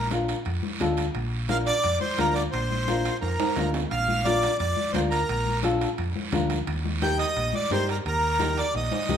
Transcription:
0.00 0.33 A#1 medium
0.11 0.36 D4 medium
0.11 0.36 F4 medium
0.11 0.36 A#4 medium
0.11 high conga medium
0.11 high timbale medium
0.11 short guiro medium
0.28 high timbale medium
0.28 short guiro medium
0.45 0.60 F2 loud
0.45 high conga soft
0.45 high timbale medium
0.45 long guiro medium
0.63 high conga medium
0.80 1.08 D2 medium
0.80 1.05 D4 medium
0.80 1.05 F4 medium
0.80 1.05 A4 medium
0.80 high conga medium
0.80 high timbale medium
0.80 low timbale medium
0.80 short guiro medium
0.97 high timbale medium
0.97 short guiro medium
1.15 1.70 A#1 medium
1.15 high conga soft
1.15 high timbale medium
1.15 long guiro medium
1.49 1.74 D4 medium
1.49 1.74 F4 medium
1.49 1.74 A#4 medium
1.49 1.57 F5 loud
1.49 high conga medium
1.49 high timbale medium
1.49 short guiro medium
1.66 1.99 D5 loud
1.66 high timbale medium
1.66 short guiro medium
1.83 1.98 F2 medium
1.83 high conga soft
1.83 high timbale medium
1.83 long guiro medium
2.01 2.19 C5 medium
2.01 high conga medium
2.18 2.46 D2 medium
2.18 2.43 D4 medium
2.18 2.43 F4 medium
2.18 2.34 A#4 medium
2.18 2.43 A#4 medium
2.18 high conga medium
2.18 high timbale medium
2.18 short guiro medium
2.34 2.42 D5 medium
2.34 high timbale medium
2.34 short guiro medium
2.52 3.08 A#1 loud
2.52 3.17 C5 medium
2.52 high conga soft
2.52 high timbale medium
2.52 long guiro medium
2.71 high conga medium
2.88 3.12 D4 medium
2.88 3.12 F4 medium
2.88 3.12 A#4 medium
2.88 high conga medium
2.88 high timbale medium
2.88 short guiro medium
3.05 high timbale medium
3.05 short guiro medium
3.21 3.36 F2 medium
3.21 3.70 A#4 medium
3.21 high conga soft
3.21 high timbale medium
3.21 long guiro medium
3.40 high conga medium
3.40 high timbale medium
3.56 3.84 D2 medium
3.56 3.81 D4 medium
3.56 3.81 F4 medium
3.56 3.82 A#4 medium
3.56 high conga medium
3.56 low timbale medium
3.56 short guiro medium
3.74 low timbale medium
3.74 short guiro medium
3.91 4.47 A#1 medium
3.91 4.26 F5 medium
3.91 high conga soft
3.91 high timbale medium
3.91 long guiro medium
4.08 high conga medium
4.25 4.50 D4 medium
4.25 4.50 F4 medium
4.25 4.50 A#4 medium
4.25 4.57 D5 loud
4.25 high conga medium
4.25 high timbale medium
4.25 short guiro medium
4.43 high timbale medium
4.43 short guiro medium
4.59 4.74 F2 medium
4.59 4.91 D5 medium
4.59 high conga soft
4.59 high timbale medium
4.59 long guiro medium
4.77 high conga medium
4.92 5.22 D2 medium
4.92 5.19 D4 medium
4.92 5.19 F4 medium
4.92 5.19 A#4 medium
4.92 5.01 C5 medium
4.92 high conga medium
4.92 high timbale medium
4.92 low timbale medium
4.92 short guiro medium
5.10 5.59 A#4 medium
5.10 high timbale medium
5.10 short guiro medium
5.29 5.85 A#1 medium
5.29 high conga soft
5.29 high timbale medium
5.29 long guiro medium
5.46 high conga medium
5.63 5.88 D4 medium
5.63 5.88 F4 medium
5.63 5.88 A4 medium
5.63 high conga medium
5.63 high timbale medium
5.63 short guiro medium
5.81 high timbale medium
5.81 short guiro medium
5.98 6.12 F2 loud
5.98 high conga soft
5.98 high timbale medium
5.98 long guiro medium
6.16 high conga medium
6.32 6.60 D2 medium
6.32 6.57 D4 medium
6.32 6.57 F4 medium
6.32 6.57 A#4 medium
6.32 high conga medium
6.32 low conga medium
6.32 high timbale medium
6.32 short guiro medium
6.50 high timbale medium
6.50 short guiro medium
6.67 7.23 D#2 loud
6.67 high conga soft
6.67 high timbale medium
6.67 long guiro medium
6.85 high conga medium
7.02 7.26 D#4 medium
7.02 7.26 G4 medium
7.02 7.26 A#4 medium
7.02 7.18 G5 loud
7.02 high conga medium
7.02 high timbale medium
7.02 short guiro medium
7.19 7.55 D#5 loud
7.19 high timbale medium
7.19 short guiro medium
7.36 7.50 A#1 medium
7.36 high conga soft
7.36 high timbale medium
7.36 long guiro medium
7.53 7.71 D5 medium
7.53 high conga medium
7.71 7.98 G2 medium
7.71 7.95 D#4 medium
7.71 7.95 G4 medium
7.71 7.96 A#4 medium
7.71 7.88 C5 medium
7.71 high conga medium
7.71 high timbale medium
7.71 low timbale medium
7.71 short guiro medium
7.89 7.97 A#4 medium
7.89 high timbale medium
7.89 short guiro medium
8.05 8.61 D#2 loud
8.05 8.60 A#4 medium
8.05 high conga soft
8.05 high timbale medium
8.05 long guiro medium
8.39 8.64 D#4 medium
8.39 8.64 G4 medium
8.39 8.64 A#4 medium
8.39 high conga medium
8.39 high timbale medium
8.39 short guiro medium
8.58 8.74 D5 medium
8.58 high timbale medium
8.58 short guiro medium
8.74 8.88 A#1 medium
8.74 9.17 D#5 medium
8.74 high conga soft
8.74 high timbale medium
8.74 long guiro medium
8.91 high conga medium
8.91 high timbale medium
9.08 9.17 C2 medium
9.08 9.17 D#4 medium
9.08 9.17 G4 medium
9.08 9.17 A#4 medium
9.08 high conga medium
9.08 low conga medium
9.08 short guiro medium

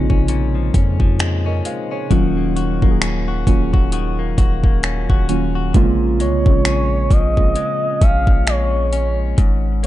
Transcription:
0.00 0.71 A#1 loud
0.00 0.28 A#2 medium
0.00 2.13 C3 medium
0.00 2.13 C#3 loud
0.00 0.54 F3 medium
0.00 1.18 G#3 medium
0.00 2.13 G#3 loud
0.00 2.11 A#3 medium
0.00 2.12 C4 loud
0.00 1.56 D#4 medium
0.00 2.12 F4 loud
0.00 1.93 G#4 medium
0.10 0.29 C#4 medium
0.10 kick medium
0.28 2.21 A#2 medium
0.28 0.74 C#4 medium
0.28 closed hi-hat medium
0.55 0.99 F3 medium
0.74 1.62 F2 loud
0.74 1.46 C#4 medium
0.74 kick medium
0.74 closed hi-hat medium
1.00 2.10 F3 medium
1.00 kick medium
1.19 1.64 G#3 medium
1.19 finger snap loud
1.19 closed hi-hat medium
1.46 1.91 C#4 medium
1.46 1.65 A#4 medium
1.46 1.65 D#5 medium
1.65 2.21 G#3 medium
1.65 1.91 C5 medium
1.65 1.91 F5 medium
1.65 closed hi-hat medium
1.91 3.01 C#4 medium
1.91 2.35 G#4 medium
1.91 2.35 C#5 medium
2.10 2.80 D#1 loud
2.10 2.77 D#3 loud
2.10 3.91 D#3 medium
2.10 2.77 F#3 loud
2.10 2.78 A#3 loud
2.10 2.78 C#4 medium
2.10 2.78 F4 loud
2.10 2.55 F#4 medium
2.10 kick loud
2.10 closed hi-hat medium
2.37 2.82 A#3 medium
2.56 3.27 F#4 medium
2.56 closed hi-hat medium
2.82 3.44 D#1 loud
2.82 3.43 D#3 medium
2.82 3.44 F#3 medium
2.82 4.19 A#3 medium
2.82 3.44 A#3 medium
2.82 3.44 C#4 medium
2.82 2.89 F#4 medium
2.82 kick medium
2.91 3.47 G#4 medium
3.02 3.46 C#4 medium
3.02 finger snap loud
3.02 closed hi-hat medium
3.28 3.72 F#4 medium
3.47 4.34 D#1 loud
3.47 5.19 D#3 medium
3.47 5.19 F#3 medium
3.47 5.20 A#3 medium
3.47 4.83 C#4 medium
3.47 5.20 C#4 medium
3.47 5.20 F4 medium
3.47 kick loud
3.47 closed hi-hat medium
3.73 3.92 F#4 medium
3.73 kick medium
3.92 5.85 D#3 medium
3.92 4.37 F#4 medium
3.92 closed hi-hat medium
4.19 4.64 A#3 medium
4.38 5.07 D#1 loud
4.38 5.08 F#4 medium
4.38 kick medium
4.38 closed hi-hat medium
4.64 6.19 A#3 medium
4.64 kick medium
4.83 5.29 C#4 medium
4.83 finger snap loud
4.83 closed hi-hat medium
5.10 5.72 D#1 loud
5.10 5.54 F#4 medium
5.10 kick medium
5.29 5.72 D#3 medium
5.29 5.72 F#3 medium
5.29 5.72 A#3 medium
5.29 6.65 C#4 medium
5.29 5.73 C#4 medium
5.29 5.73 F4 medium
5.29 closed hi-hat medium
5.55 5.85 F#4 medium
5.74 6.21 A#1 loud
5.74 9.38 A#2 medium
5.74 5.82 C3 medium
5.74 6.41 G#3 loud
5.74 6.42 A#3 loud
5.74 6.42 C4 loud
5.74 6.42 F4 loud
5.74 kick loud
5.74 closed hi-hat medium
5.81 6.44 C#3 loud
6.20 6.45 C2 medium
6.20 7.56 G#3 medium
6.20 7.13 C#5 medium
6.20 closed hi-hat medium
6.46 7.08 A#1 loud
6.46 7.30 C#3 medium
6.46 7.31 G#3 medium
6.46 7.31 A#3 medium
6.46 7.31 C#4 medium
6.46 7.31 G#4 medium
6.46 kick loud
6.65 8.01 C#4 medium
6.65 finger snap loud
6.65 closed hi-hat medium
7.11 7.54 A#1 loud
7.11 9.49 F3 medium
7.11 8.04 D#5 loud
7.11 kick loud
7.11 closed hi-hat medium
7.37 9.05 C#3 medium
7.37 9.06 G#3 medium
7.37 9.06 A#3 medium
7.37 9.06 C#4 medium
7.37 9.06 F4 medium
7.37 kick medium
7.56 8.47 G#3 medium
7.56 closed hi-hat medium
8.01 9.34 A#1 loud
8.01 8.92 C#4 medium
8.01 8.50 F5 loud
8.01 kick medium
8.01 closed hi-hat medium
8.27 kick medium
8.47 9.83 G#3 medium
8.47 9.19 C#5 medium
8.47 finger snap loud
8.47 closed hi-hat medium
8.93 9.87 C#4 medium
8.93 closed hi-hat medium
9.38 9.87 G#1 loud
9.38 9.87 G#2 medium
9.38 kick loud
9.38 closed hi-hat medium
9.83 9.87 A#3 medium
9.83 closed hi-hat medium

